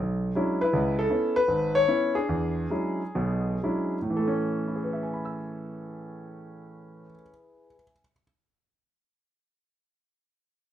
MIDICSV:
0, 0, Header, 1, 2, 480
1, 0, Start_track
1, 0, Key_signature, 3, "major"
1, 0, Tempo, 378788
1, 920, Time_signature, 4, 2, 24, 8
1, 2375, Tempo, 414938
1, 3335, Tempo, 461894
1, 4295, Tempo, 531915
1, 10698, End_track
2, 0, Start_track
2, 0, Title_t, "Grand piano"
2, 0, Program_c, 0, 0
2, 0, Note_on_c, 0, 35, 61
2, 385, Note_off_c, 0, 35, 0
2, 446, Note_on_c, 0, 54, 52
2, 448, Note_on_c, 0, 56, 49
2, 457, Note_on_c, 0, 61, 52
2, 458, Note_on_c, 0, 62, 51
2, 461, Note_on_c, 0, 64, 62
2, 768, Note_off_c, 0, 54, 0
2, 769, Note_off_c, 0, 56, 0
2, 773, Note_off_c, 0, 61, 0
2, 773, Note_off_c, 0, 62, 0
2, 775, Note_off_c, 0, 64, 0
2, 778, Note_on_c, 0, 71, 89
2, 811, Note_on_c, 0, 64, 59
2, 923, Note_on_c, 0, 49, 60
2, 927, Note_on_c, 0, 37, 70
2, 1206, Note_off_c, 0, 71, 0
2, 1251, Note_on_c, 0, 69, 88
2, 1332, Note_off_c, 0, 49, 0
2, 1334, Note_off_c, 0, 37, 0
2, 1383, Note_off_c, 0, 64, 0
2, 1392, Note_on_c, 0, 59, 51
2, 1396, Note_on_c, 0, 61, 45
2, 1402, Note_on_c, 0, 64, 53
2, 1720, Note_off_c, 0, 59, 0
2, 1722, Note_off_c, 0, 61, 0
2, 1725, Note_off_c, 0, 64, 0
2, 1725, Note_on_c, 0, 71, 103
2, 1732, Note_off_c, 0, 69, 0
2, 1877, Note_on_c, 0, 32, 67
2, 2219, Note_on_c, 0, 73, 108
2, 2221, Note_off_c, 0, 71, 0
2, 2306, Note_off_c, 0, 32, 0
2, 2375, Note_on_c, 0, 59, 50
2, 2386, Note_on_c, 0, 61, 52
2, 2387, Note_on_c, 0, 64, 58
2, 2692, Note_off_c, 0, 59, 0
2, 2695, Note_on_c, 0, 68, 84
2, 2697, Note_off_c, 0, 61, 0
2, 2698, Note_off_c, 0, 64, 0
2, 2699, Note_off_c, 0, 73, 0
2, 2706, Note_on_c, 0, 62, 55
2, 2854, Note_on_c, 0, 40, 64
2, 3273, Note_off_c, 0, 40, 0
2, 3325, Note_off_c, 0, 62, 0
2, 3332, Note_on_c, 0, 54, 45
2, 3336, Note_on_c, 0, 56, 45
2, 3341, Note_on_c, 0, 61, 43
2, 3342, Note_on_c, 0, 62, 42
2, 3344, Note_on_c, 0, 64, 51
2, 3646, Note_off_c, 0, 54, 0
2, 3648, Note_off_c, 0, 56, 0
2, 3651, Note_off_c, 0, 61, 0
2, 3651, Note_off_c, 0, 62, 0
2, 3652, Note_off_c, 0, 64, 0
2, 3799, Note_on_c, 0, 47, 66
2, 3802, Note_on_c, 0, 35, 65
2, 4226, Note_off_c, 0, 47, 0
2, 4227, Note_off_c, 0, 35, 0
2, 4300, Note_on_c, 0, 54, 51
2, 4301, Note_on_c, 0, 56, 46
2, 4304, Note_on_c, 0, 61, 47
2, 4304, Note_on_c, 0, 62, 46
2, 4304, Note_on_c, 0, 64, 57
2, 4560, Note_off_c, 0, 68, 0
2, 4608, Note_off_c, 0, 54, 0
2, 4608, Note_off_c, 0, 56, 0
2, 4609, Note_off_c, 0, 64, 0
2, 4610, Note_off_c, 0, 61, 0
2, 4610, Note_off_c, 0, 62, 0
2, 4649, Note_on_c, 0, 45, 53
2, 4721, Note_on_c, 0, 52, 53
2, 4780, Note_on_c, 0, 69, 65
2, 4799, Note_on_c, 0, 57, 51
2, 4879, Note_on_c, 0, 61, 62
2, 5242, Note_on_c, 0, 64, 38
2, 5314, Note_on_c, 0, 68, 36
2, 5390, Note_on_c, 0, 71, 37
2, 5472, Note_on_c, 0, 76, 37
2, 5559, Note_on_c, 0, 80, 32
2, 5655, Note_on_c, 0, 83, 32
2, 5760, Note_on_c, 0, 88, 28
2, 7369, Note_off_c, 0, 45, 0
2, 7442, Note_off_c, 0, 52, 0
2, 7464, Note_off_c, 0, 69, 0
2, 7519, Note_off_c, 0, 57, 0
2, 7599, Note_off_c, 0, 61, 0
2, 7926, Note_off_c, 0, 64, 0
2, 7998, Note_off_c, 0, 68, 0
2, 8074, Note_off_c, 0, 71, 0
2, 8156, Note_off_c, 0, 76, 0
2, 8243, Note_off_c, 0, 80, 0
2, 8339, Note_off_c, 0, 83, 0
2, 8444, Note_off_c, 0, 88, 0
2, 10698, End_track
0, 0, End_of_file